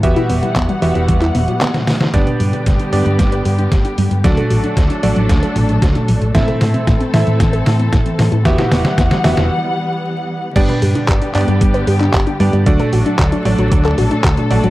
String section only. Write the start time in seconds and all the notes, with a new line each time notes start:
Already playing: E3
0.03 G3 B3 F#5
2.14 D3 G3 B3 G4
4.24 F#3 A3 D4 A4
6.35 E3 C4 A4
8.45 G3 B3 F#5
10.56 D3 G3 B3 G4
12.66 F#3 A3 D4 A4